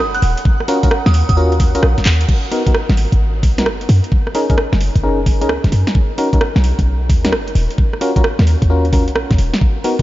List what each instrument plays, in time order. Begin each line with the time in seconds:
Already playing: ambient pad F#5
0.00 808-style bass F#1
0.14 synth bell F#6, closed hi-hat
0.22 808-style bass D#1, open hi-hat
0.37 closed hi-hat
0.45 kick
0.60 cross-stick
0.68 fm electric piano C#4 F4 F#4 A#4, open hi-hat
0.83 fm electric piano C#4 F4 F#4 A#4, kick, closed hi-hat
0.91 cross-stick
1.06 808-style bass D#2, synth bell D#6, snare, closed hi-hat
1.14 synth bell D#6, open hi-hat
1.29 808-style bass D#2, synth bell D#6, kick, closed hi-hat
1.37 fm electric piano C#4 F4 F#4 A#4, synth bell D#6
1.52 closed hi-hat
1.60 kick, open hi-hat
1.75 808-style bass A#1, fm electric piano C#4 F4 F#4 A#4, closed hi-hat
1.83 808-style bass A#1, cross-stick
1.98 kick, snare, closed hi-hat
2.06 808-style bass D#2, clap, open hi-hat
2.21 closed hi-hat
2.29 kick, crash
2.52 fm electric piano B3 D#4 F#4 A#4, open hi-hat
2.67 fm electric piano B3 D#4 F#4 A#4, kick, closed hi-hat
2.74 cross-stick
2.89 808-style bass G#1, snare
2.97 open hi-hat
3.12 808-style bass G#1, kick, closed hi-hat
3.43 808-style bass B1, kick, open hi-hat
3.58 fm electric piano B3 D#4 F#4 A#4, snare, closed hi-hat
3.66 808-style bass F#1, cross-stick
3.81 closed hi-hat
3.89 808-style bass F#2, open hi-hat
4.04 closed hi-hat
4.12 kick
4.27 cross-stick
4.35 fm electric piano C#4 D#4 G#4 A#4, open hi-hat
4.50 fm electric piano C#4 D#4 G#4 A#4, kick, closed hi-hat
4.58 cross-stick
4.73 808-style bass F#1, snare
4.81 open hi-hat
4.96 808-style bass F#1, kick, closed hi-hat
5.03 fm electric piano C#4 D#4 G#4 A#4
5.26 kick, open hi-hat
5.41 808-style bass C#2, fm electric piano C#4 D#4 G#4 A#4, closed hi-hat
5.49 cross-stick
5.64 808-style bass F#1, kick, snare, closed hi-hat
5.72 808-style bass F#2, open hi-hat
5.87 snare, closed hi-hat
5.95 kick
6.18 fm electric piano C#4 D#4 F#4 A#4, open hi-hat
6.33 fm electric piano C#4 D#4 F#4 A#4, kick, closed hi-hat
6.41 cross-stick
6.56 808-style bass B1, snare
6.64 open hi-hat
6.79 808-style bass B1, kick, closed hi-hat
7.10 808-style bass D#2, kick, open hi-hat
7.25 fm electric piano C#4 D#4 F#4 A#4, snare, closed hi-hat
7.32 808-style bass F#1, cross-stick
7.48 closed hi-hat
7.55 808-style bass D#1, open hi-hat
7.71 closed hi-hat
7.78 kick
7.93 cross-stick
8.01 fm electric piano C#4 F4 F#4 A#4, open hi-hat
8.16 fm electric piano C#4 F4 F#4 A#4, kick, closed hi-hat
8.24 cross-stick
8.39 808-style bass D#2, snare
8.47 open hi-hat
8.62 808-style bass D#2, kick, closed hi-hat
8.70 fm electric piano C#4 F4 F#4 A#4
8.85 closed hi-hat
8.93 fm electric piano C#4 F4 F#4 A#4, kick, open hi-hat
9.08 808-style bass A#1, closed hi-hat
9.16 cross-stick
9.31 808-style bass D#2, kick, snare, closed hi-hat
9.38 808-style bass D#1, open hi-hat
9.54 snare, closed hi-hat
9.61 kick
9.84 fm electric piano B3 D#4 F#4 A#4, open hi-hat